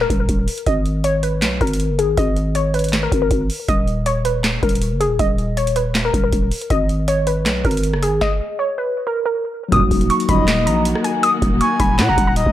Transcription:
0.01 A#4
0.10 D#1, kick, closed hi-hat
0.20 A#4
0.29 D#1, kick, closed hi-hat
0.48 closed hi-hat, open hi-hat
0.58 closed hi-hat
0.66 G#1 D#5, kick, closed hi-hat
0.86 closed hi-hat
1.04 C#5, closed hi-hat
1.23 B4, closed hi-hat
1.42 B1, snare, clap, closed hi-hat
1.61 G#1 A#4, kick, closed hi-hat
1.67 closed hi-hat
1.73 closed hi-hat
1.80 closed hi-hat
1.90 F#1
1.99 G#4, closed hi-hat
2.04 G#1
2.17 G#1 D#5, kick, closed hi-hat
2.37 closed hi-hat
2.55 C#5, closed hi-hat
2.74 B4, closed hi-hat
2.79 closed hi-hat
2.84 closed hi-hat
2.89 closed hi-hat
2.93 snare, clap, closed hi-hat
3.03 A#4
3.12 G#1, kick, closed hi-hat
3.22 A#4
3.31 G#1, kick, closed hi-hat
3.50 open hi-hat
3.68 D#1 D#5, kick, closed hi-hat
3.88 closed hi-hat
4.06 C#5, closed hi-hat
4.25 B4, closed hi-hat
4.44 snare, clap, closed hi-hat
4.63 D#1 A#4, kick, closed hi-hat
4.69 closed hi-hat
4.75 closed hi-hat
4.82 closed hi-hat
4.92 F#1
5.00 G#4, closed hi-hat
5.06 D#1
5.19 D#1 D#5, kick, closed hi-hat
5.38 closed hi-hat
5.57 C#5, closed hi-hat
5.67 closed hi-hat
5.76 B4, closed hi-hat
5.95 snare, clap, closed hi-hat
6.05 A#4
6.14 D#1, kick, closed hi-hat
6.24 A#4
6.33 D#1, kick, closed hi-hat
6.51 closed hi-hat, open hi-hat
6.61 closed hi-hat
6.70 G#1 D#5, kick, closed hi-hat
6.89 closed hi-hat
7.08 C#5, closed hi-hat
7.27 B4, closed hi-hat
7.46 B1, snare, clap, closed hi-hat
7.65 G#1 A#4, kick, closed hi-hat
7.71 closed hi-hat
7.77 closed hi-hat
7.83 closed hi-hat
7.94 F#1, cross-stick
8.03 G#4, closed hi-hat
8.07 G#1
8.21 D#5, kick, snare
8.59 C#5
8.78 B4
9.07 A#4
9.26 A#4
9.69 D#1 F#2 A#2 D#3 F#3 A#3 D#4 F#4 D#6, kick, closed hi-hat
9.73 D#4 F#4
9.91 D#1, kick, closed hi-hat, open hi-hat
10.01 closed hi-hat
10.10 C#6, closed hi-hat
10.20 closed hi-hat
10.29 D#1 F#2 A#2 D#3 D#5 B5, kick, closed hi-hat
10.48 snare, clap, closed hi-hat
10.66 A#1 A#5, closed hi-hat
10.85 closed hi-hat
10.95 cross-stick
11.04 G#5, closed hi-hat
11.23 D#6, closed hi-hat
11.42 D#1, kick, closed hi-hat
11.61 G#5 C#6, closed hi-hat
11.80 D#1 B5, kick, closed hi-hat
11.99 A#2 F#5, snare, clap, closed hi-hat
12.09 D#1 A#5
12.17 D#1, kick, closed hi-hat
12.27 A#5
12.36 D#5, closed hi-hat
12.46 D#1, kick

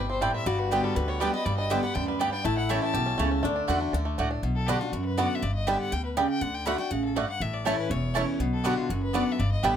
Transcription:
Already playing: G1 B2 G3 E4 G4
0.10 C4 C5
0.21 A2 G3 C4 E4 C5 D5 G5
0.34 C4 E5
0.46 G1 G2 G3 F#4 D5
0.59 D4 B4
0.71 D3 G3 B3 G4 D5 G5
0.83 G3 A4
0.96 D2 D3 B4
1.08 B3 C#5
1.20 D3 G3 B3 G4 D5 G5
1.33 B3 G4 D#5
1.45 G1 G2 G3 D5
1.57 D4 D#5
1.70 D3 G3 B3 G4 D5 E5 G5
1.82 B3 G4 F#5
1.94 D2 F#2 D4 G5
2.08 G3 B4
2.19 G2 B3 G4 D5 G5
2.32 D4 G5
2.45 A1 A2 A3 E4 A5
2.57 E4 F#5
2.69 E3 A3 C#4 E4 G4 C#5 E5 A5
2.82 A3 A5
2.93 B1 B2 G4
3.06 C#4
3.18 C#2 C#3 A3 E4 C#5 A5
3.31 C#4
3.43 D2 D3 A3 D4
3.56 D4
3.67 E2 D3 A3 D4 F#4 D5 F#5
3.81 D4
3.93 D2 D3 D4
4.05 A3
4.18 C#2 A2 A3 D4 F#4 D5 F#5
4.31 D4
4.43 B1 B2
4.56 A4
4.67 D3 B3 D4 F#4 G4 D5 F#5
4.80 D4 F4 F#4
4.92 F#2 F#4
5.05 B4
5.18 D3 B3 D4 F#4 D5 F#5
5.26 F#5
5.35 E5
5.42 G1 G2 D5
5.55 D#5
5.67 D3 G3 B3 D4 G4 D5 E5 G5
5.80 F#5
5.92 D2 B2 G5
6.05 B4
6.17 C#3 G3 B3 D4 G4 D5 G5
6.29 G5
6.41 D2 D3 F#5
6.55 G5
6.66 D3 A3 D4 F#4 D5 F#5 B5
6.78 D4 F#4 G5
6.91 A1 C#3 F#5
7.05 A4
7.16 G2 A3 D4 F#4 D5 F#5
7.29 F#5
7.40 A1 A2 E5
7.54 D5
7.65 E3 A3 C#4 E4 C#5 A5
7.78 B4
7.90 E1 E2 C#5
8.14 E3 A3 C#4 E4 C#5 A5
8.39 B1 B2
8.53 A4
8.64 D3 B3 D4 F#4 G4 D5 F#5
8.77 F4
8.90 F#1 F#2 F#4
9.03 B4
9.13 D3 B3 D4 F#4 D5 F#5
9.23 F#5
9.32 E5
9.39 G1 G2 D5
9.52 D#5
9.63 A1 D3 G3 B3 D4 G4 D5 E5 G5

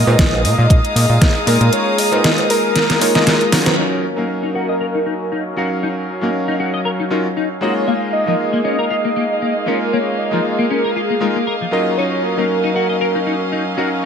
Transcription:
Already playing: G#4 D#5 F5 A#5 D#6
0.06 A#2 G#3 A#3 D#4 F4 A#4, cowbell
0.19 A#1, kick, snare, closed hi-hat
0.33 cowbell
0.44 A#2 D#5, open hi-hat
0.58 A#2
0.70 A#1, kick, closed hi-hat
0.85 closed hi-hat
0.96 A#2, open hi-hat
1.09 A#2
1.21 A#1, kick, snare, closed hi-hat
1.46 A#2 G#3 A#3 D#4 F4 A#4, open hi-hat
1.61 A#2, closed hi-hat
1.73 C#5, closed hi-hat
1.98 D#5, open hi-hat
2.11 G#3 A#3 D#4 F4 A#4, closed hi-hat, cowbell
2.24 snare, closed hi-hat
2.38 closed hi-hat, cowbell
2.50 A#4, open hi-hat
2.76 snare, closed hi-hat
2.90 snare, closed hi-hat
3.00 G#3 A#3 D#4 F4 C#5, open hi-hat
3.14 G#3 A#3 D#4 F4 D#5, snare, closed hi-hat
3.27 snare, closed hi-hat
3.41 closed hi-hat
3.52 F#3 C#4 D#4 F4 A#4, snare, open hi-hat
3.66 snare, closed hi-hat, cowbell
3.78 F#3 C#4 D#4 C#5 D#5 F5
4.03 A#4
4.16 F#3 A#3 C#4 D#4 A#4 F5
4.29 A#4
4.43 D#4
4.54 F#4 A#4
4.69 D#5
4.81 A#4
4.95 D#4
5.06 D#4
5.32 D#4
5.56 F#3 C#4 D#4 F#4 A#4 F5
5.83 D#4 C#5
6.21 F#3 A#3 C#4 D#4 A#4 F5
6.48 D#4
6.60 F#4
6.74 D#5
6.85 A#4
7.00 D#4
7.10 F#3 C#4 D#4 F4 A#4
7.37 D#4
7.61 G#3 A#3 D#4 F4 F#4 C#5 D#5
7.87 A#3 G#4 D#5 F5
8.13 D#5
8.26 F3 G#3 A#3 D#4 F4 A#4
8.53 A#3
8.64 C#4 D#5
8.79 A#4
8.90 F4
9.05 A#3
9.16 A#3
9.42 A#3
9.66 G#3 A#3 C#4 D#4 F4 A#4
9.93 A#3 C#5
10.19 D#5
10.31 F3 G#3 A#3 D#4 F4 A#4
10.59 A#3
10.70 C#4 A#4
10.84 A#4
10.90 A#4
10.96 F4 G#4
11.10 A#3
11.20 G#3 A#3 D#4 F4 A#4
11.36 A#3
11.47 A#4
11.61 F3
11.71 F#3 C#4 D#4 F4 A#4 D#5
11.98 F#3 C#4 D#4 C#5
12.23 A#4
12.37 F#3 A#3 C#4 D#4 A#4 F5
12.64 D#4
12.74 F#4 A#4
12.89 D#5
13.01 A#4
13.15 D#4
13.27 D#4
13.52 D#4
13.77 F#3 C#4 D#4 F#4 A#4 F5

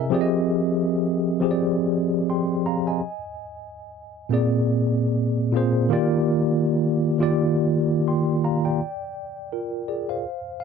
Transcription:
Already playing: C3 C4 E4 G#4 D#5 E5 G#5 A#5
0.00 A#4
0.10 F3 C4 G4 G#4
0.14 D5
0.21 D#5
1.40 F3 C4 G4 G#4
1.44 C5
1.51 D5
2.30 G5 C6
2.66 F5 A#5
2.87 D#5 G#5
4.29 A#2 A#3 C4 G#4
4.34 D5
5.52 A#2 A#3 C4 G#4
5.57 C5
5.89 D#3 A#3 F4 G4
5.93 D5
7.18 D#3 A#3 F4 G4
7.23 D5
8.08 G5 C6
8.44 F5 A#5
8.65 D5 G5
9.53 F4 A#4
9.88 G#4 D5
10.09 C5 F5
10.60 F5

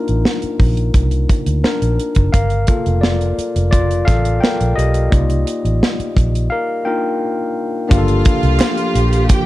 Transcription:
Already playing: A#3 D4 D#4 F4 A#4
0.08 A1, closed hi-hat
0.25 snare
0.42 muted fingered electric bass stroke, closed hi-hat
0.60 A#1, kick, open hi-hat
0.77 closed hi-hat
0.94 C2, kick, closed hi-hat
1.11 closed hi-hat
1.29 kick, closed hi-hat
1.46 D2, closed hi-hat
1.64 D4 A#4, muted fingered electric bass stroke, snare
1.82 A#1, closed hi-hat
1.99 closed hi-hat
2.15 F#1, kick, closed hi-hat
2.32 G1 A#4 F5, kick, closed hi-hat
2.50 closed hi-hat
2.67 A#3 F4 A4, kick, closed hi-hat
2.86 F1, closed hi-hat
3.01 F4 D5, snare
3.21 closed hi-hat
3.38 muted fingered electric bass stroke, closed hi-hat
3.56 F1, closed hi-hat
3.71 F4 D5, kick, closed hi-hat
3.91 closed hi-hat
4.05 A1 A4 F5, kick, closed hi-hat
4.09 snare
4.25 closed hi-hat
4.40 A#4 G5, snare
4.61 A#1, closed hi-hat
4.76 B1 G4 D#5, closed hi-hat
4.94 closed hi-hat
5.10 C2 A#3 D#4 F4 D5, kick, closed hi-hat
5.30 closed hi-hat
5.47 closed hi-hat
5.65 A1, closed hi-hat
5.83 snare
6.00 muted fingered electric bass stroke, closed hi-hat
6.17 A#1, kick, closed hi-hat
6.35 closed hi-hat
6.50 A#4 F5
6.85 A#3 D4 D#4 F4 A#4 G5
7.89 G1 F3 A#3 D4 F4 G4 F5, kick, closed hi-hat
7.98 A4
8.08 closed hi-hat
8.25 kick, closed hi-hat
8.43 C2, closed hi-hat
8.59 snare, clap, closed hi-hat
8.77 closed hi-hat
8.95 A#1, closed hi-hat
9.13 closed hi-hat
9.29 G4 G5, kick, closed hi-hat

